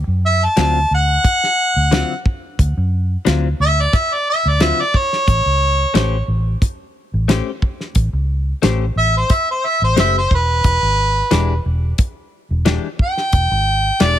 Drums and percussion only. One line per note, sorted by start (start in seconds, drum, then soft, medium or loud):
0.57 snare loud
0.57 closed hi-hat medium
1.24 kick loud
1.24 closed hi-hat medium
1.44 snare soft
1.92 snare loud
1.92 closed hi-hat medium
2.26 kick medium
2.59 kick loud
2.59 closed hi-hat medium
3.27 snare loud
3.27 closed hi-hat medium
3.93 kick loud
3.93 closed hi-hat medium
4.60 snare loud
4.60 closed hi-hat medium
4.94 kick medium
5.13 snare soft
5.28 kick loud
5.28 closed hi-hat medium
5.95 snare loud
5.95 closed hi-hat medium
6.62 kick loud
6.62 closed hi-hat medium
7.29 snare loud
7.29 closed hi-hat medium
7.62 kick medium
7.81 snare soft
7.95 kick medium
7.95 closed hi-hat medium
8.63 snare loud
8.63 closed hi-hat medium
9.30 kick loud
9.30 closed hi-hat medium
9.97 snare loud
9.97 closed hi-hat medium
10.31 kick medium
10.64 kick loud
10.64 closed hi-hat medium
11.31 snare loud
11.31 closed hi-hat medium
11.98 kick loud
11.98 closed hi-hat medium
12.66 snare loud
12.66 closed hi-hat medium
12.99 kick medium
13.17 snare soft
13.33 kick loud
13.33 closed hi-hat medium
14.00 snare loud
14.00 closed hi-hat medium